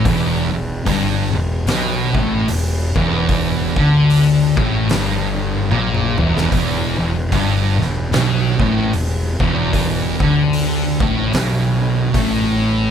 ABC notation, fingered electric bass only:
X:1
M:4/4
L:1/8
Q:"Swing" 1/4=74
K:Em
V:1 name="Fingered electric bass" clef=bass
E,,, E,,, G,,, E,,, B,,, A,,, E,,, E,,,- | E,,, D,,2 A,,, G,,,2 ^A,,, E,,, | E,,, E,,, G,,, E,,, B,,, A,,, E,,, E,,,- | E,,, D,,2 A,,, B,,,2 A,,,2 |]